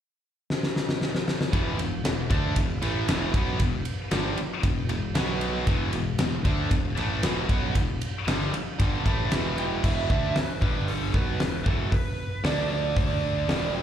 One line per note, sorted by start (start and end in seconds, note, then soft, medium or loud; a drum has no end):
0.50 snare medium
0.63 snare medium
0.76 snare medium
0.89 snare medium
1.01 snare medium
1.15 snare medium
1.28 snare loud
1.41 snare loud
1.53 1.77 E1 medium
1.53 1.79 E2 medium
1.53 1.79 B2 medium
1.53 1.79 E3 loud
1.53 kick medium
1.53 ride medium
1.78 2.03 E1 medium
1.78 2.00 E2 medium
1.78 2.00 B2 medium
1.78 ride medium
2.04 2.29 E1 medium
2.04 2.26 E2 medium
2.04 2.26 B2 medium
2.04 snare loud
2.04 ride loud
2.30 2.55 D2 medium
2.30 2.56 D3 medium
2.30 2.56 A3 medium
2.30 2.56 D4 medium
2.30 kick loud
2.30 ride medium
2.56 2.81 E1 medium
2.56 2.77 E2 medium
2.56 2.77 B2 medium
2.56 kick medium
2.56 ride loud
2.82 3.06 A1 medium
2.82 3.07 A2 medium
2.82 3.07 E3 medium
2.82 3.08 A3 medium
2.82 ride medium
3.07 3.32 E1 medium
3.07 3.33 E2 medium
3.07 3.33 B2 medium
3.07 3.33 E3 medium
3.07 snare loud
3.07 ride loud
3.34 3.58 B1 medium
3.34 3.59 B2 medium
3.34 3.60 F#3 medium
3.34 3.60 B3 loud
3.34 kick loud
3.34 ride medium
3.60 3.84 E1 medium
3.60 3.81 E2 medium
3.60 3.81 B2 medium
3.60 kick medium
3.60 ride medium
3.85 ride medium
4.11 4.36 G1 medium
4.11 4.37 G2 medium
4.11 4.37 D3 loud
4.11 4.37 G3 medium
4.11 snare loud
4.11 ride medium
4.37 muted overdriven electric guitar stroke medium
4.37 muted picked electric bass stroke soft
4.37 muted distorted electric guitar stroke medium
4.37 ride medium
4.63 4.88 E1 medium
4.63 4.85 E2 medium
4.63 4.85 B2 medium
4.63 kick medium
4.63 ride medium
4.89 5.14 E1 medium
4.89 5.11 E2 medium
4.89 5.11 B2 medium
4.89 ride medium
5.15 5.63 B1 medium
5.15 5.67 B2 medium
5.15 5.67 F#3 loud
5.15 5.67 B3 loud
5.15 snare loud
5.15 ride medium
5.41 ride medium
5.67 5.91 E1 medium
5.67 5.93 E2 loud
5.67 5.93 B2 loud
5.67 5.93 E3 loud
5.67 kick medium
5.67 ride medium
5.93 6.17 E1 medium
5.93 6.15 E2 medium
5.93 6.15 B2 medium
5.93 ride medium
6.19 6.43 E1 medium
6.19 6.40 E2 medium
6.19 6.41 B2 medium
6.19 snare loud
6.19 ride loud
6.45 6.69 D2 loud
6.45 6.71 D3 medium
6.45 6.71 A3 medium
6.45 6.71 D4 medium
6.45 kick loud
6.45 ride medium
6.71 6.95 E1 medium
6.71 6.93 E2 medium
6.71 6.93 B2 medium
6.71 kick medium
6.71 ride medium
6.97 7.22 A1 medium
6.97 7.23 A2 medium
6.97 7.23 E3 medium
6.97 7.23 A3 loud
6.97 ride medium
7.23 7.47 E1 medium
7.23 7.49 E2 medium
7.23 7.48 B2 loud
7.23 7.49 E3 loud
7.23 snare loud
7.23 ride loud
7.49 7.73 B1 loud
7.49 7.74 B2 medium
7.49 7.75 F#3 medium
7.49 7.75 B3 loud
7.49 kick loud
7.49 ride medium
7.75 7.99 E1 medium
7.75 7.97 E2 medium
7.75 7.97 B2 medium
7.75 kick medium
7.75 ride loud
8.01 ride medium
8.27 8.51 G1 loud
8.27 8.53 G2 medium
8.27 8.53 D3 loud
8.27 8.53 G3 medium
8.27 snare loud
8.27 ride loud
8.41 snare soft
8.53 muted picked electric bass stroke soft
8.53 muted overdriven electric guitar stroke medium
8.53 muted distorted electric guitar stroke medium
8.53 ride medium
8.80 9.04 G1 medium
8.80 9.05 G2 medium
8.80 9.05 D3 medium
8.80 9.05 G3 medium
8.80 kick loud
8.80 ride medium
9.06 9.30 A1 medium
9.06 9.31 A2 medium
9.06 9.31 E3 medium
9.06 9.32 A3 medium
9.06 kick medium
9.06 ride medium
9.32 9.80 E1 medium
9.32 9.83 E2 medium
9.32 9.83 B2 medium
9.32 9.84 E3 medium
9.32 snare loud
9.32 ride loud
9.58 9.66 G5 loud
9.58 ride medium
9.84 10.08 E1 medium
9.84 10.09 E2 medium
9.84 10.09 B2 medium
9.84 10.10 E3 medium
9.84 10.38 E5 medium
9.84 kick medium
9.84 crash medium
10.10 10.34 D2 medium
10.10 10.35 D3 medium
10.10 10.35 A3 medium
10.10 10.36 D4 medium
10.10 kick loud
10.36 10.62 B4 medium
10.36 muted distorted electric guitar stroke soft
10.36 muted picked electric bass stroke soft
10.36 muted overdriven electric guitar stroke medium
10.36 snare loud
10.36 open hi-hat medium
10.62 11.10 G1 medium
10.62 11.13 G2 medium
10.62 11.13 D3 medium
10.62 11.13 G3 medium
10.62 10.89 B4 medium
10.62 kick loud
10.88 11.14 A4 medium
10.88 open hi-hat medium
11.13 11.38 B1 medium
11.13 11.39 B2 medium
11.13 11.39 F#3 medium
11.13 11.39 B3 medium
11.13 11.66 B4 medium
11.13 kick medium
11.40 11.64 E1 medium
11.40 11.61 E2 medium
11.40 11.61 B2 medium
11.40 snare loud
11.40 open hi-hat medium
11.66 11.90 E1 loud
11.66 11.91 E2 medium
11.66 11.92 B2 medium
11.66 11.92 E3 medium
11.66 11.90 A4 medium
11.66 kick loud
11.92 12.46 B4 medium
11.92 muted overdriven electric guitar stroke medium
11.92 muted picked electric bass stroke soft
11.92 muted distorted electric guitar stroke medium
11.92 kick medium
11.92 open hi-hat medium
12.44 13.45 D2 medium
12.44 13.48 D3 medium
12.44 13.48 A3 medium
12.44 13.49 D4 loud
12.44 12.70 D5 medium
12.44 snare loud
12.44 open hi-hat medium
12.71 12.96 D5 medium
12.96 13.78 D5 medium
12.96 kick loud
12.96 open hi-hat soft
13.48 13.82 E1 medium
13.48 13.82 E2 medium
13.48 13.82 B2 medium
13.48 13.82 E3 loud
13.48 snare loud
13.48 open hi-hat medium
13.75 13.82 G5 loud